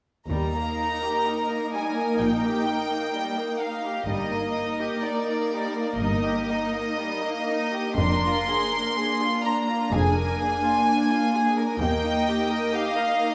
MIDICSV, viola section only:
0, 0, Header, 1, 2, 480
1, 0, Start_track
1, 0, Key_signature, -3, "major"
1, 0, Tempo, 944882
1, 151, Time_signature, 4, 2, 24, 8
1, 2548, Tempo, 981997
1, 4948, Tempo, 930233
1, 6713, End_track
2, 0, Start_track
2, 0, Title_t, "Viola section"
2, 0, Program_c, 0, 48
2, 154, Note_on_c, 0, 58, 37
2, 157, Note_on_c, 0, 63, 39
2, 2046, Note_off_c, 0, 58, 0
2, 2048, Note_off_c, 0, 63, 0
2, 2065, Note_on_c, 0, 63, 43
2, 2067, Note_on_c, 0, 58, 40
2, 3980, Note_off_c, 0, 63, 0
2, 3981, Note_off_c, 0, 58, 0
2, 4000, Note_on_c, 0, 62, 47
2, 4001, Note_on_c, 0, 58, 46
2, 5900, Note_off_c, 0, 62, 0
2, 5901, Note_off_c, 0, 58, 0
2, 5923, Note_on_c, 0, 58, 50
2, 5924, Note_on_c, 0, 63, 50
2, 6713, Note_off_c, 0, 58, 0
2, 6713, Note_off_c, 0, 63, 0
2, 6713, End_track
0, 0, End_of_file